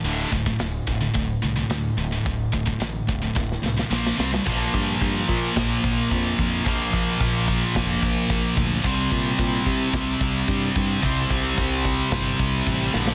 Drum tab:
CC |----------------|----------------|x-x-x-x-x-x-x-x-|x-x-x-x-x-x-x-x-|
HH |o-o-o-o-o-o-o-o-|o-o-o-o---------|----------------|----------------|
SD |----o-------o---|----o---oooooooo|--------o-------|--------o-------|
BD |--oo--o-o-------|o-oo--o-o-------|o-o-o-o-o-o-o-o-|o-o-o-o-o-o-o-o-|

CC |x-x-x-x-x-x-x-x-|x-x-x-x-x-x-x---|
HH |----------------|----------------|
SD |--------o-------|--------o-----oo|
BD |o-o-o-o-o-o-o-o-|o-o-o-o-o-o-o---|